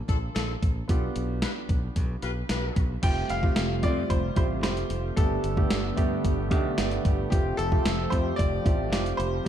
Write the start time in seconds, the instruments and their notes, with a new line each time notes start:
Already playing: grand piano A#3 D4 F4 A4
0.09 fingered electric bass A#1, horn section D4 F4 A4, kick, closed hi-hat
0.35 fingered electric bass A#1, horn section D4 F4 A4, snare, closed hi-hat
0.62 fingered electric bass A#1, kick, closed hi-hat
0.88 fingered electric bass B1, grand piano B3 D4 F4 G4, kick, closed hi-hat
1.16 fingered electric bass B1, closed hi-hat
1.42 horn section F4 G4 B4, snare, closed hi-hat
1.69 fingered electric bass B1, kick, closed hi-hat
1.96 fingered electric bass B1, kick, closed hi-hat
2.22 fingered electric bass B1, horn section F4 G4 B4, closed hi-hat
2.49 fingered electric bass B1, horn section F4 G4 B4, snare, closed hi-hat
2.76 fingered electric bass B1, kick, closed hi-hat
3.02 fingered electric bass F1, analog synth pad C3 G3 A3 F4, grand piano A3 C4 F4 G4 G5, kick, closed hi-hat, crash
3.29 fingered electric bass F1, grand piano F5, closed hi-hat
3.42 grand piano A3 C4 F4 G4, kick
3.56 fingered electric bass F1, snare, closed hi-hat
3.82 fingered electric bass F2, grand piano A3 C4 F4 G4 D5, kick, closed hi-hat
4.10 fingered electric bass F1, grand piano C5, kick, closed hi-hat
4.36 fingered electric bass A1, grand piano A3 C4 F4 G4 C5, kick, closed hi-hat
4.63 fingered electric bass F1, grand piano A3 C4 F4 G4 C5, snare, closed hi-hat
4.77 closed hi-hat
4.90 fingered electric bass F1, closed hi-hat
5.16 fingered electric bass G1, analog synth pad D3 B3 G4, grand piano A3 B3 D4 G4 A4, kick, closed hi-hat
5.44 fingered electric bass G1, closed hi-hat
5.56 grand piano A3 B3 D4 G4, kick
5.71 fingered electric bass G1, snare, closed hi-hat
5.97 fingered electric bass G2, grand piano A3 B3 D4 G4, kick, closed hi-hat
6.25 fingered electric bass G1, kick, closed hi-hat
6.50 fingered electric bass B1, grand piano A3 B3 D4 G4, kick, closed hi-hat
6.77 fingered electric bass G1, grand piano A3 B3 D4 G4, snare, closed hi-hat
6.91 closed hi-hat
7.05 fingered electric bass G1, kick, closed hi-hat
7.30 fingered electric bass F1, analog synth pad F3 C4, grand piano A3 C4 F4 G4, kick, closed hi-hat
7.57 fingered electric bass F1, grand piano A4, closed hi-hat
7.71 grand piano A3 C4 F4 G4, kick
7.85 fingered electric bass F1, snare, closed hi-hat
8.10 fingered electric bass F2, grand piano A3 C4 F4 G4 C5, kick, closed hi-hat
8.36 fingered electric bass F1, grand piano D5, kick, closed hi-hat
8.65 fingered electric bass A1, grand piano A3 C4 F4 G4, kick, closed hi-hat
8.92 fingered electric bass F1, grand piano A3 C4 F4 G4, snare, closed hi-hat
9.06 closed hi-hat
9.17 fingered electric bass F1, grand piano C5, closed hi-hat
9.45 grand piano G3